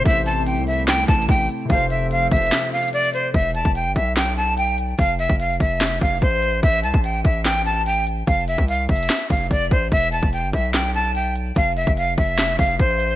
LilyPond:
<<
  \new Staff \with { instrumentName = "Flute" } { \time 4/4 \key f \lydian \tempo 4 = 146 e''8 a''8 g''8 e''8 g''8 a''8 g''8 r8 | f''8 e''8 f''8 e''4 f''8 d''8 c''8 | e''8 a''8 g''8 e''8 g''8 a''8 g''8 r8 | f''8 e''8 f''8 e''4 f''8 c''4 |
e''8 a''8 g''8 e''8 g''8 a''8 g''8 r8 | f''8 e''8 f''8 e''4 f''8 d''8 c''8 | e''8 a''8 g''8 e''8 g''8 a''8 g''8 r8 | f''8 e''8 f''8 e''4 f''8 c''4 | }
  \new Staff \with { instrumentName = "Analog synth pad" } { \time 4/4 \key f \lydian <a c' e'>1 | <f f' a' c''>1 | r1 | r1 |
r1 | r1 | r1 | r1 | }
  \new Staff \with { instrumentName = "Grand piano" } { \time 4/4 \key f \lydian <c a e' c''>1 | <c a f' c''>1 | r1 | r1 |
r1 | r1 | r1 | r1 | }
  \new Staff \with { instrumentName = "808-style bass" } { \clef bass \time 4/4 \key f \lydian a,,4~ a,,16 c,4~ c,16 a,,8 a,,8 r8 | f,,4. f,,8 r2 | e,,8. e,,8 g,,16 b,,2~ b,,8 | f,,8. f,,8. f,,4 f,,8 a,,4 |
a,,8 c,16 a,,8. a,,2~ a,,8 | f,,8. c,8. f,,8 r8 f,,8 f,,8 a,,8 | e,,8. e,,8 g,,16 b,,2~ b,,8 | f,,8. f,,8. f,,4 f,,8 a,,4 | }
  \new DrumStaff \with { instrumentName = "Drums" } \drummode { \time 4/4 <hh bd>8 hh8 hh8 hho8 \tuplet 3/2 { <hc hh sn>16 r16 r16 <hh bd>16 hh16 hh16 } <hh bd>8 hh8 | <hh bd>8 hh8 hh8 <hh hho bd>32 hh32 hh32 hh32 <hc hh sn>8 hh32 hh32 hh32 hh32 hh8 hh8 | <hh bd>8 hh16 bd16 hh8 <hh bd>8 <hc hh sn>8 hh8 hh8 hh8 | <hh bd>8 hh16 bd16 hh8 <hh bd>8 <hc hh sn>8 <hh bd>8 <hh bd>8 hh8 |
<hh bd>8 hh16 bd16 hh8 <hh bd>8 <hc hh sn>8 hh8 hh8 hh8 | <hh bd>8 hh16 bd16 \tuplet 3/2 { hh16 r16 r16 <hh bd>16 hh16 hh16 <hc hh sn>16 r16 r16 <hh bd>16 hh16 hh16 } <hh bd>8 <hh bd>8 | <hh bd>8 hh16 bd16 hh8 <hh bd>8 <hc hh sn>8 hh8 hh8 hh8 | <hh bd>8 hh16 bd16 hh8 <hh bd>8 <hc hh sn>8 <hh bd>8 <hh bd>8 hh8 | }
>>